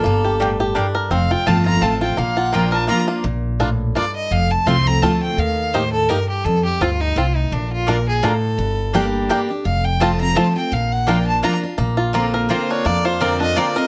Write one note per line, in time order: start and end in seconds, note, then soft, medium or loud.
0.00 0.55 A#3 medium
0.00 0.76 A4 medium
0.05 0.75 G1 medium
0.05 0.73 G2 medium
0.24 0.59 G4 medium
0.40 0.75 A2 loud
0.40 0.91 G3 medium
0.40 0.50 A#3 medium
0.40 0.50 G4 medium
0.40 0.50 D5 medium
0.40 0.51 G5 loud
0.60 1.08 G4 medium
0.75 1.10 G2 medium
0.75 0.85 A#3 medium
0.75 1.11 D4 medium
0.75 0.85 G4 loud
0.75 0.86 D5 medium
0.75 0.86 G5 loud
0.95 1.11 A#4 medium
1.10 1.34 F1 medium
1.10 1.79 F2 medium
1.10 1.62 C4 medium
1.10 1.33 F5 medium
1.31 1.46 F4 medium
1.31 1.49 G5 loud
1.46 1.77 G1 medium
1.46 1.80 F3 medium
1.46 1.81 A3 medium
1.46 1.56 C4 medium
1.46 1.81 C4 loud
1.46 1.57 F4 medium
1.46 1.66 F4 medium
1.46 1.82 F4 loud
1.46 1.57 C5 medium
1.46 1.65 A5 medium
1.46 1.57 A5 loud
1.66 2.01 F4 medium
1.66 1.84 A#5 loud
1.81 2.12 A1 medium
1.81 2.16 F3 medium
1.81 2.16 A3 medium
1.81 1.92 C4 medium
1.81 2.17 C4 medium
1.81 2.16 C4 medium
1.81 1.92 F4 medium
1.81 2.17 F4 medium
1.81 1.92 C5 medium
1.81 2.02 A5 loud
1.81 1.92 A5 medium
2.01 2.36 F4 medium
2.01 2.20 G5 medium
2.17 2.88 A#1 medium
2.17 2.86 A#2 medium
2.17 2.51 A#3 medium
2.17 2.38 F5 medium
2.37 2.85 F4 medium
2.37 2.55 F#5 medium
2.52 2.87 F3 medium
2.52 3.04 A#3 medium
2.52 2.63 A#3 medium
2.52 2.88 A#3 loud
2.52 2.88 D4 loud
2.52 2.63 F4 medium
2.52 2.88 F4 loud
2.52 2.64 D5 loud
2.52 2.72 G5 medium
2.52 2.64 A#5 medium
2.72 3.21 A#4 medium
2.72 2.88 A5 medium
2.87 3.23 F3 medium
2.87 2.98 A#3 medium
2.87 3.23 A#3 medium
2.87 3.23 D4 medium
2.87 3.24 F4 medium
2.87 2.99 F4 medium
2.87 3.24 F4 loud
2.87 2.99 D5 medium
2.87 2.99 A#5 loud
2.87 3.01 A#5 medium
3.08 3.24 A#3 medium
3.24 3.94 A#1 medium
3.24 3.92 A#2 loud
3.60 3.94 A2 medium
3.60 3.69 A#3 medium
3.60 3.69 D4 medium
3.60 3.69 F4 medium
3.95 4.30 G2 medium
3.95 4.04 A#3 medium
3.95 4.04 D4 medium
3.95 4.05 F4 medium
3.95 4.14 D5 medium
4.16 4.33 D#5 medium
4.31 4.54 F1 medium
4.31 4.99 F2 medium
4.31 4.53 F5 loud
4.51 4.68 A5 loud
4.66 4.97 C2 medium
4.66 4.86 F3 medium
4.66 4.86 A3 loud
4.66 4.75 C4 medium
4.66 4.86 C4 loud
4.66 4.76 F4 medium
4.66 4.86 F4 medium
4.66 4.88 C6 loud
4.87 5.03 C4 medium
4.87 5.02 F4 medium
4.87 5.04 A#5 loud
5.02 5.32 D2 medium
5.02 5.37 F3 medium
5.02 5.37 A3 loud
5.02 5.11 C4 medium
5.02 5.37 C4 loud
5.02 5.11 F4 medium
5.02 5.37 F4 loud
5.02 5.22 A5 medium
5.23 5.40 G5 medium
5.37 6.08 D#2 medium
5.37 6.06 D#3 medium
5.37 5.75 F5 medium
5.74 6.08 A2 medium
5.74 5.83 A#3 medium
5.74 5.83 D#4 medium
5.74 5.83 G4 medium
5.74 5.92 C5 medium
5.92 6.10 A4 loud
6.09 6.44 G2 medium
6.09 6.18 A#3 medium
6.09 6.18 D#4 medium
6.09 6.18 G4 medium
6.09 6.29 A#4 medium
6.29 6.46 G4 medium
6.44 6.68 F2 medium
6.44 6.81 F2 medium
6.44 6.64 A4 medium
6.65 6.83 G4 medium
6.80 7.11 D2 medium
6.80 7.15 G2 loud
6.80 6.89 C4 medium
6.80 6.90 F4 medium
6.80 7.02 F4 medium
7.01 7.19 D#4 medium
7.16 7.46 C2 medium
7.16 7.50 A2 medium
7.16 7.25 C4 medium
7.16 7.37 F4 medium
7.16 7.26 F4 medium
7.35 7.54 D#4 medium
7.52 8.22 A#1 loud
7.52 7.87 A#2 medium
7.52 7.72 D4 medium
7.73 7.90 F4 medium
7.87 8.22 A#2 loud
7.87 7.97 A#3 medium
7.87 7.96 A#3 medium
7.87 7.96 D4 medium
7.87 7.97 F4 medium
7.87 7.96 F4 medium
7.87 8.07 A#4 loud
7.87 7.97 D5 medium
7.87 7.98 A#5 medium
8.09 8.26 G#4 medium
8.23 8.57 A2 medium
8.23 8.33 A#3 medium
8.23 8.32 A#3 soft
8.23 8.32 D4 medium
8.23 8.33 F4 medium
8.23 8.32 F4 medium
8.23 9.30 A4 medium
8.23 8.33 D5 medium
8.23 8.33 A#5 loud
8.58 9.28 G1 medium
8.58 9.26 G2 medium
8.93 9.28 G3 loud
8.93 9.04 A#3 medium
8.93 9.28 A#3 loud
8.93 9.03 A#3 medium
8.93 9.28 D4 loud
8.93 9.03 D4 medium
8.93 9.04 G4 medium
8.93 9.03 G4 medium
8.93 9.29 G4 loud
8.93 9.04 D5 medium
8.93 9.04 G5 loud
9.29 9.49 G3 medium
9.29 9.39 A#3 medium
9.29 9.49 A#3 loud
9.29 9.39 A#3 medium
9.29 9.49 D4 medium
9.29 9.39 D4 medium
9.29 9.40 G4 loud
9.29 9.48 G4 loud
9.29 9.39 G4 medium
9.29 9.40 D5 medium
9.29 9.40 G5 loud
9.49 9.65 D4 medium
9.49 9.64 G4 medium
9.65 10.35 F1 medium
9.65 10.33 F2 medium
9.65 9.86 F5 medium
9.85 10.03 G5 loud
10.00 10.19 F3 medium
10.00 10.20 A3 loud
10.00 10.10 C4 medium
10.00 10.20 C4 loud
10.00 10.11 F4 medium
10.00 10.10 F4 medium
10.00 10.19 F4 loud
10.00 10.11 C5 medium
10.00 10.20 A5 medium
10.00 10.11 A5 medium
10.20 10.35 C4 medium
10.20 10.35 F4 medium
10.20 10.38 A#5 loud
10.35 10.55 F3 medium
10.35 10.55 A3 medium
10.35 10.46 C4 medium
10.35 10.45 C4 medium
10.35 10.55 C4 loud
10.35 10.46 F4 loud
10.35 10.45 F4 medium
10.35 10.55 F4 medium
10.35 10.47 C5 medium
10.35 10.56 A5 loud
10.35 10.47 A5 medium
10.56 10.72 C4 medium
10.56 10.71 F4 medium
10.56 10.74 G5 medium
10.71 11.42 A#1 medium
10.71 11.40 A#2 medium
10.71 10.94 F5 medium
10.92 11.10 F#5 medium
11.07 11.41 F3 medium
11.07 11.17 A#3 medium
11.07 11.16 A#3 medium
11.07 11.42 A#3 medium
11.07 11.16 D4 medium
11.07 11.42 D4 loud
11.07 11.18 F4 medium
11.07 11.16 F4 medium
11.07 11.42 F4 loud
11.07 11.18 D5 medium
11.07 11.26 G5 medium
11.07 11.18 A#5 medium
11.27 11.42 A5 loud
11.43 11.62 F3 medium
11.43 11.53 A#3 medium
11.43 11.52 A#3 medium
11.43 11.62 A#3 medium
11.43 11.52 D4 medium
11.43 11.62 D4 loud
11.43 11.53 F4 loud
11.43 11.52 F4 medium
11.43 11.62 F4 medium
11.43 11.53 D5 medium
11.43 11.55 A#5 medium
11.43 11.54 A#5 loud
11.63 11.79 D4 soft
11.63 11.78 F4 medium
11.78 12.48 A#1 loud
11.78 12.47 A#2 medium
11.78 12.13 A#3 medium
11.97 12.50 F4 medium
12.13 12.48 D3 medium
12.13 12.85 A#3 medium
12.13 12.48 A#3 loud
12.13 12.24 C4 medium
12.13 12.48 C4 loud
12.13 12.24 F4 medium
12.13 12.49 F4 loud
12.13 12.24 D5 medium
12.13 12.25 A#5 loud
12.34 13.21 A#4 medium
12.49 12.83 D3 medium
12.49 12.84 A#3 medium
12.49 12.84 C4 loud
12.49 12.60 C4 loud
12.49 12.60 F4 medium
12.49 12.84 F4 loud
12.49 13.04 F4 medium
12.49 12.72 C5 medium
12.49 12.60 D5 medium
12.49 12.60 A#5 loud
12.70 13.40 D4 medium
12.70 12.88 C#5 medium
12.85 13.55 F2 medium
12.85 13.53 F2 medium
12.85 13.87 A#3 medium
12.85 13.07 D5 loud
13.05 13.56 F4 medium
13.05 13.23 C5 medium
13.20 13.40 D3 medium
13.20 13.40 A#3 loud
13.20 13.31 C4 medium
13.20 13.40 C4 loud
13.20 13.31 F4 medium
13.20 13.39 F4 loud
13.20 13.76 A#4 medium
13.20 13.31 D5 medium
13.20 13.40 D5 medium
13.20 13.31 A#5 loud
13.40 13.55 C4 medium
13.40 13.87 D4 medium
13.40 13.55 F4 medium
13.40 13.58 D#5 loud
13.56 13.75 D3 medium
13.56 13.75 A#3 loud
13.56 13.67 C4 medium
13.56 13.76 C4 loud
13.56 13.87 F4 medium
13.56 13.75 F4 medium
13.56 13.67 F4 medium
13.56 13.79 D5 medium
13.56 13.67 D5 loud
13.56 13.67 A#5 loud
13.76 13.87 C4 medium
13.76 13.87 F4 medium
13.76 13.87 A#4 medium
13.76 13.87 D#5 medium